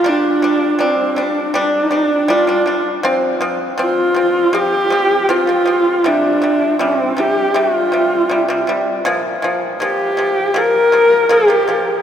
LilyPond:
<<
  \new Staff \with { instrumentName = "Horsehead fiddle" } { \time 4/4 \tempo 4 = 80 d'4 c'8 d'8 d'4 f'8. r16 | r4 f'4 g'4 f'4 | d'4 c'8 g'8 f'4. r8 | r4 g'4 bes'4 g'4 | }
  \new Staff \with { instrumentName = "Pipa" } { \clef bass \time 4/4 <g d'>8 <g d'>8 <g d'>8 <g d'>8 <g d'>8 <g d'>8 <g d'>16 <g d'>16 <g d'>8 | <f c'>8 <f c'>8 <f c'>8 <f c'>8 <f c'>8 <f c'>8 <f c'>16 <f c'>16 <f c'>8 | <c g>8 <c g>8 <c g>8 <c g>8 <c g>8 <c g>8 <c g>16 <c g>16 <c g>8 | <bes, f>8 <bes, f>8 <bes, f>8 <bes, f>8 <bes, f>8 <bes, f>8 <bes, f>16 <bes, f>16 <bes, f>8 | }
>>